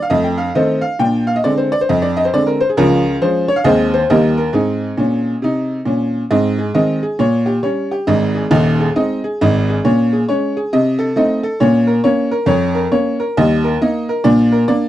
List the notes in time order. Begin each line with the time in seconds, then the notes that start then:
0.02 F5
0.10 F2 A3 D#5
0.24 G5
0.38 F5
0.55 D#3 A3 C4 A4 C5 D#5
0.81 F5
0.99 A#2 D4 G5
1.27 F5
1.36 D#5
1.44 D3 G#3 C4 D5
1.57 C5
1.72 D5
1.81 C5
1.89 F2 D#5
2.02 D5
2.17 D#5
2.25 C5
2.34 D3 G#3 C4 D5
2.47 A#4
2.61 C5
2.69 G#4
2.77 C#2 F3 C#4 F4 A#4
3.22 F3 G#3 C#4 C5
3.48 C#5
3.56 F5
3.64 D#2 D#3 G#3 C4 G#4 C5 D#5
3.94 C5
4.10 D#2 D#3 G3 A#3 G4 A#4 D#5
4.37 A#4
4.53 G#2 C4 D#4 G#4
4.98 A#2 C#4
5.42 C3 D#4
5.85 A#2 C#4
6.31 G#2 C4 D#5
6.59 G#4
6.74 D#3 G#3 C4 D#5
7.03 G#4
7.19 A#2 C#5
7.46 G4
7.63 G3 C#4 C#5
7.91 G4
8.07 G#1 G#2 D#5
8.35 G#4
8.51 D#1 D#2 D#5
8.80 G#4
8.96 G#3 C4 D#4 D#5
9.24 G#4
9.41 G#1 G#2 D#5
9.70 G#4
9.85 A#2 C#4 C#5
10.13 G#4
10.28 G#3 C#4 C#5
10.57 G#4
10.73 C3 D#5
10.99 A4
11.16 A3 C4 D#4 D#5
11.43 A4
11.60 A#2 C#4 C#5
11.87 A#4
12.04 A#3 C#4 C#5
12.31 A#4
12.46 F2 C#5
12.75 A#4
12.92 A#3 C#4 C#5
13.20 A#4
13.37 D#2 G3 D#5
13.64 A#4
13.82 A#3 D#4 D#5
14.09 A#4
14.24 A#2 D4 D5
14.52 A#4
14.68 A#3 D4 D5